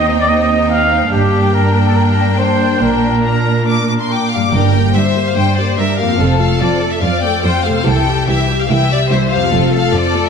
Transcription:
Already playing: cello section D#2, viola section C4, violin section D#4 G5
0.07 trumpet section D#5
0.18 trumpet section D5
0.28 trumpet section D#5
0.70 trumpet section F5
1.11 double bass section G1, cello section G2, viola section A#3, violin section D4 G5, trumpet section G4
1.53 trumpet section A#4
1.74 trumpet section A#4
1.86 trumpet section A4
1.95 trumpet section A#4
2.38 trumpet section C5
2.81 double bass section A#1, cello section A#2, trumpet section A#4
3.24 violin section A#5
3.67 violin section D6
3.88 violin section D6
3.99 violin section C6
4.10 violin section G5 D6
4.31 violin section F5
4.36 harp G2
4.40 harp A#3
4.44 harp D4
4.49 harp G4, violin section G5
4.53 double bass section G1, cello section G2, timpani G2, viola section G3 D4, violin section A#4
4.75 viola section A#3 G4
4.95 cello section G2, viola section G3 D4, violin section C5 E5
5.16 viola section A#3 G4
5.28 violin section F5
5.37 cello section G2, viola section G3 D4, violin section G5
5.57 viola section A#3 G4, violin section D5
5.78 cello section G2, viola section G3 D4, violin section A#4 E5
5.99 harp F2, viola section A#3 G4, violin section F5
6.07 harp C4
6.12 harp F4
6.16 viola section C4 F4, harp A4, violin section A4
6.20 double bass section F1, cello section F2
6.39 viola section A3 A4, violin section F5
6.60 cello section F2, viola section C4 F4, violin section D5
6.82 viola section A3 A4
6.91 violin section E5
7.00 cello section F2, viola section C4 F4, violin section D5 F5
7.22 viola section A3 A4, violin section G5
7.42 cello section F2, viola section C4 F4, violin section C5 G5
7.63 viola section A3 A4, violin section F5
7.69 harp C3
7.74 harp C4
7.79 harp E4
7.83 double bass section C2, viola section E3 E4, harp G4, violin section A4 G5
7.87 cello section C2
8.06 viola section G3 G4
8.28 cello section C2, viola section E3 E4, violin section G4 E5
8.50 viola section G3 G4
8.61 violin section F5
8.69 cello section C2, viola section E3 E4, violin section E5 G5
8.91 viola section G3 G4, violin section D5
9.11 cello section C2, viola section E3 E4, violin section C5 E5
9.31 harp F2, viola section G3 G4, violin section F5
9.40 harp C4
9.44 harp F4
9.49 double bass section F1, cello section F2, viola section F4, harp A4, violin section A4
9.53 viola section C4
9.73 viola section A3 A4, violin section F5
9.94 cello section F2, viola section C4 F4, violin section D5
10.15 viola section A3 A4
10.26 violin section E5

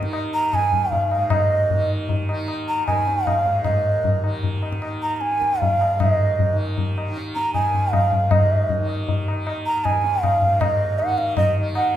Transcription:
Already playing: tanpura D#2 G#2
0.00 tanpura D#3, tabla ke
0.13 tabla na
0.34 bansuri A#5
0.53 bansuri G#5, tabla na, tabla ge
0.57 tanpura D#2
0.73 tabla ge
0.91 bansuri F5, tabla tin, tabla ge
1.11 tanpura G#2, tabla na
1.30 bansuri D#5, tabla na, tabla ge
1.70 tanpura D#3, tabla tin, tabla ge
2.09 tabla tin, tabla ge
2.29 tanpura D#3, tabla na
2.48 tabla na
2.68 bansuri A#5
2.87 tanpura D#2, bansuri G#5, tabla na, tabla ge
3.08 tabla te
3.26 bansuri F5, tabla na, tabla ge
3.45 tanpura G#2, tabla te
3.64 tanpura G#2, bansuri D#5, tabla na, tabla ge
4.04 tabla tin, tabla ge
4.23 tanpura D#3, tabla na
4.43 tabla tin, tabla ge
4.63 tabla na
4.72 tabla ke
4.81 tanpura D#3, tabla na
5.02 bansuri A#5
5.16 bansuri A#5
5.21 bansuri G#5, tabla te
5.32 tabla te
5.37 tanpura D#2
5.42 tabla ke
5.52 tabla te
5.59 bansuri F5, tabla tin, tabla ge
5.81 tabla na
5.95 tanpura G#2
6.00 bansuri D#5, tabla na, tabla ge
6.39 tabla tin, tabla ge
6.53 tanpura D#3
6.78 tabla tin, tabla ge
6.98 tabla na
7.09 tanpura D#3
7.17 tabla te
7.35 bansuri A#5, tabla te
7.54 bansuri G#5, tabla na, tabla ge
7.65 tanpura D#2
7.74 tabla ge
7.93 bansuri F5, tabla na, tabla ge
8.12 tabla ge
8.22 tanpura G#2
8.31 bansuri D#5, tabla na, tabla ge
8.69 tabla tin, tabla ge
8.79 tanpura D#3
8.89 tabla na
9.08 tabla tin, tabla ge
9.28 tabla na
9.34 tanpura D#3
9.47 tabla na
9.66 bansuri A#5
9.85 bansuri G#5, tabla na, tabla ge
9.90 tanpura D#2
10.04 tabla te
10.23 bansuri F5, tabla na, tabla ge
10.42 tanpura G#2, tabla ge
10.61 bansuri D#5, tabla na, tabla ge
10.99 bansuri F#5, tabla na
11.03 tanpura D#3
11.18 bansuri F5, tabla te
11.37 bansuri D#5, tabla na, tabla ge
11.58 tanpura D#3
11.75 bansuri F#5, tabla na

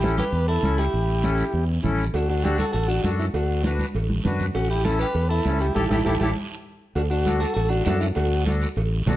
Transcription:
Already playing: fingered electric bass A1, clean electric guitar E4, transistor combo organ G4
0.03 accordion C#4 E4 A4, high conga, short guiro
0.18 clean electric guitar G4, transistor combo organ B4, high conga, short guiro
0.32 fingered electric bass E2, high conga, long guiro
0.48 clean electric guitar E4, transistor combo organ A4
0.62 fingered electric bass C#2, accordion C#4 E4 A4, high conga, short guiro
0.78 clean electric guitar E4, transistor combo organ G4, short guiro
0.93 fingered electric bass A1, high conga, long guiro
1.22 accordion C#4 E4 A4, high conga, short guiro
1.38 short guiro
1.53 fingered electric bass E2, high conga, long guiro
1.83 fingered electric bass A1, accordion C#4 E4 A4, high conga, low conga, short guiro
1.99 short guiro
2.14 fingered electric bass D2, clean electric guitar D4, transistor combo organ F#4, cowbell, high conga, long guiro
2.30 clean electric guitar D4, transistor combo organ F#4
2.44 accordion D4 F#4 A4, clean electric guitar D4, transistor combo organ G4, cowbell, high conga, short guiro
2.58 clean electric guitar F#4, transistor combo organ A4, high conga, short guiro
2.73 fingered electric bass A1, clean electric guitar F#4, transistor combo organ A4, cowbell, high conga, long guiro
2.88 clean electric guitar D4, transistor combo organ F#4
3.03 fingered electric bass F#2, accordion D4 F#4 A4, clean electric guitar D4, transistor combo organ F#4, cowbell, high conga, short guiro
3.19 clean electric guitar C#4, transistor combo organ E4, short guiro
3.34 fingered electric bass D2, clean electric guitar D4, transistor combo organ F#4, cowbell, high conga, long guiro
3.64 accordion D4 F#4 B4, cowbell, high conga, short guiro
3.79 high conga, short guiro
3.94 fingered electric bass A1, cowbell, high conga, long guiro
4.10 high conga
4.24 fingered electric bass F#2, accordion D4 F#4 B4, cowbell, high conga, low conga, short guiro
4.40 low conga, short guiro
4.55 fingered electric bass A1, clean electric guitar C#4, transistor combo organ F#4, cowbell, high conga, long guiro
4.70 clean electric guitar E4, transistor combo organ G4
4.85 accordion C#4 E4 A4, clean electric guitar E4, transistor combo organ A4, cowbell, high conga, short guiro
4.99 clean electric guitar G4, transistor combo organ B4, short guiro
5.15 fingered electric bass E2, cowbell, high conga, long guiro
5.29 clean electric guitar E4, transistor combo organ A4
5.45 fingered electric bass C#2, accordion C#4 E4 A4, cowbell, high conga, low timbale, short guiro
5.59 clean electric guitar E4, transistor combo organ G4, short guiro
5.75 fingered electric bass A1, transistor combo organ E4 G4 A4, accordion E4 G4 A4, clean electric guitar E4 G4 A4, high conga, high timbale, long guiro
5.89 fingered electric bass A1, transistor combo organ E4 G4 A4, accordion E4 G4 A4, clean electric guitar E4 G4 A4, high conga, high timbale, long guiro
6.05 fingered electric bass A1, transistor combo organ E4 G4 A4, accordion E4 G4 A4, clean electric guitar E4 G4 A4, high conga, high timbale, long guiro
6.19 fingered electric bass A1, transistor combo organ E4 G4 A4, accordion E4 G4 A4, clean electric guitar E4 G4 A4, high conga, high timbale
6.95 fingered electric bass D2, clean electric guitar D4, transistor combo organ F#4, cowbell, long guiro
7.10 clean electric guitar D4, transistor combo organ F#4
7.25 accordion D4 F#4 A4, cowbell, high conga, short guiro
7.40 clean electric guitar F#4, transistor combo organ A4, short guiro
7.54 fingered electric bass A1, clean electric guitar F#4, transistor combo organ A4, cowbell, long guiro
7.69 clean electric guitar D4, transistor combo organ F#4
7.85 fingered electric bass F#2, clean electric guitar D4, accordion D4 F#4 A4, transistor combo organ F#4, cowbell, high conga, low timbale, short guiro
8.00 clean electric guitar C#4, transistor combo organ E4, short guiro
8.15 fingered electric bass D2, clean electric guitar D4, transistor combo organ F#4, cowbell, long guiro
8.46 accordion D4 F#4 A4, cowbell, high conga, short guiro
8.62 short guiro
8.76 fingered electric bass A1, cowbell, long guiro
9.06 fingered electric bass B1, accordion D4 F#4 A4, cowbell, high conga, low conga, low timbale, short guiro

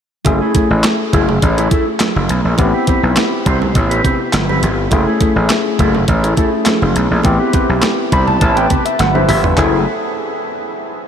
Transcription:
0.25 slap bass F#1, tine electric piano A3 C#4 E4 G#4, muted clean electric guitar stroke, kick, closed hi-hat, muted conga
0.41 clean electric guitar A3 E4 G#4
0.55 clean electric guitar A3 E4 G#4, kick, closed hi-hat, muted conga
0.70 slap bass A1, muted clean electric guitar stroke
0.84 muted clean electric guitar stroke, snare, clap, closed hi-hat, high conga
1.00 muted clean electric guitar stroke
1.13 slap bass F#1, clean electric guitar A3 E4 G#4, kick, closed hi-hat
1.29 muted clean electric guitar stroke, low conga
1.42 slap bass A1, muted clean electric guitar stroke, kick, closed hi-hat, muted conga
1.57 clean electric guitar A3 E4 G#4, closed hi-hat
1.71 clean electric guitar A3 E4 A4, kick, closed hi-hat, muted conga
1.87 muted clean electric guitar stroke
2.00 muted clean electric guitar stroke, snare, clap, closed hi-hat, high conga
2.16 slap bass F#1, muted clean electric guitar stroke, high conga
2.29 slap bass B1, closed hi-hat
2.45 slap bass A#1, muted clean electric guitar stroke
2.58 slap bass A1, tine electric piano B3 C4 E4 G4, muted clean electric guitar stroke, kick, closed hi-hat, muted conga
2.74 clean electric guitar C4 G4 B4
2.87 clean electric guitar C4 G4 B4, kick, closed hi-hat, muted conga
3.03 slap bass B1, muted clean electric guitar stroke
3.16 muted clean electric guitar stroke, snare, clap, closed hi-hat, high conga
3.32 muted clean electric guitar stroke
3.46 slap bass C2, clean electric guitar C4 G4 C5, kick, closed hi-hat
3.61 muted clean electric guitar stroke, low conga
3.75 slap bass A1, muted clean electric guitar stroke, kick, closed hi-hat, muted conga
3.90 clean electric guitar C4 G4 B4, closed hi-hat
4.04 clean electric guitar C4 G4 B4, kick, closed hi-hat, muted conga, low conga
4.20 muted clean electric guitar stroke
4.33 slap bass G1, muted clean electric guitar stroke, snare, clap, closed hi-hat, high conga
4.49 clean electric guitar C4 G4 B4, high conga
4.62 slap bass G1, muted clean electric guitar stroke, closed hi-hat
4.79 muted clean electric guitar stroke
4.91 slap bass F#1, tine electric piano A3 C#4 E4 G#4, muted clean electric guitar stroke, kick, closed hi-hat, muted conga
5.07 clean electric guitar A3 E4 G#4
5.21 clean electric guitar A3 E4 G#4, kick, closed hi-hat, muted conga
5.36 slap bass A1, muted clean electric guitar stroke
5.50 muted clean electric guitar stroke, snare, clap, closed hi-hat, high conga
5.66 muted clean electric guitar stroke
5.79 slap bass F#1, clean electric guitar A3 E4 G#4, kick, closed hi-hat
5.95 muted clean electric guitar stroke, low conga
6.08 slap bass A1, muted clean electric guitar stroke, kick, closed hi-hat, muted conga
6.23 clean electric guitar A3 E4 G#4, closed hi-hat
6.37 clean electric guitar A3 E4 A4, tine electric piano A3 C#4 E4 G4, kick, closed hi-hat, muted conga
6.45 tine electric piano G#4
6.52 muted clean electric guitar stroke
6.66 muted clean electric guitar stroke, snare, clap, closed hi-hat, high conga
6.81 slap bass F#1, muted clean electric guitar stroke, high conga
6.96 slap bass B1, closed hi-hat
7.11 slap bass A#1, muted clean electric guitar stroke
7.23 slap bass A1, tine electric piano B3 C4 E4 G4, muted clean electric guitar stroke, kick, closed hi-hat, muted conga
7.40 clean electric guitar C4 G4 B4
7.53 clean electric guitar C4 G4 B4, kick, closed hi-hat, muted conga
7.69 slap bass B1, muted clean electric guitar stroke
7.82 muted clean electric guitar stroke, snare, clap, closed hi-hat, high conga
7.98 muted clean electric guitar stroke
8.12 slap bass C2, clean electric guitar C4 G4 C5, tine electric piano B5, kick, closed hi-hat
8.27 tine electric piano A5, muted clean electric guitar stroke, low conga
8.41 slap bass A1, tine electric piano A5, muted clean electric guitar stroke, kick, closed hi-hat, muted conga
8.56 clean electric guitar C4 G4 B4, tine electric piano G5, closed hi-hat
8.70 clean electric guitar C4 G4 B4, kick, closed hi-hat, low conga
8.85 tine electric piano E5, muted clean electric guitar stroke, closed hi-hat
8.99 slap bass G1, tine electric piano F#5, muted clean electric guitar stroke, snare, closed hi-hat, high conga
9.14 clean electric guitar C4 G4 B4, tine electric piano E4 C5 E5, high conga
9.28 slap bass G1, tine electric piano G4 E5, muted clean electric guitar stroke, mid tom, open hi-hat
9.44 tine electric piano D4 B4, muted clean electric guitar stroke, floor tom
9.57 slap bass F#1, clean electric guitar A3 E4 G#4, tine electric piano A3 C#4 E4 G#4, kick, clap, muted conga

